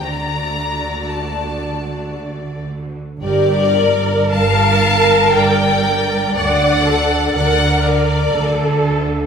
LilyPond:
<<
  \new Staff \with { instrumentName = "Violin section" } { \time 3/4 \key g \minor \tempo 4 = 59 bes''4 a''4 r4 | d''4 a''4 g''4 | fis''4 fis''8 d''4 r8 | }
  \new Staff \with { instrumentName = "Violin section" } { \time 3/4 \key g \minor d''2~ d''8 r8 | bes'4 f''4 d''4 | d''4 d''8 bes'4 r8 | }
  \new Staff \with { instrumentName = "Viola section" } { \time 3/4 \key g \minor <a fis'>2. | g'8 bes'2~ bes'8 | d''8 a'8 bes'4 a'4 | }
  \new Staff \with { instrumentName = "Cello section" } { \clef bass \time 3/4 \key g \minor d2. | g,4 g,4 g,4 | d4 d4 d4 | }
  \new Staff \with { instrumentName = "Double bass section" } { \clef bass \time 3/4 \key g \minor d,2. | g,,4 g,,4 g,,4 | d,4 d,4 d,4 | }
>>